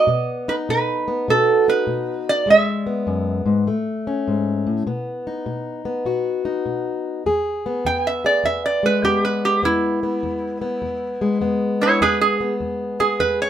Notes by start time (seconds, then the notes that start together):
Already playing: D#5
0.07 B2 B3
0.48 D#4 B4
0.69 B2 B4
1.08 B3
1.28 B2 F#4 A4
1.68 D#4 B4
1.87 B2
2.29 D5
2.46 E2 G#3
2.50 E5
2.86 B3
3.07 F#2
3.46 G#2
3.67 A2 A3
4.07 C#4
4.28 G#2
4.67 A2
4.87 B2 B3
5.27 D#4
5.46 B2
5.85 B3
6.05 B2 F#4
6.45 D#4
6.66 B2
7.26 E2 G#4
7.66 B3
7.85 E2 G5
8.07 E5
8.24 G#4 D5
8.44 E2 E5
8.66 D5
8.83 G#3 B4
9.03 E2 B3 G4
9.25 B4
9.45 G4
9.63 E2 B3 E4
10.03 B3
10.23 E2
10.61 B3
10.82 E2
11.21 G#3
11.41 E2 B3
11.81 E4 C#5
12.01 E2 G#4 B4
12.21 G#4
12.40 B3
12.61 E2
13.00 G#4
13.20 E2 B4
13.42 C#5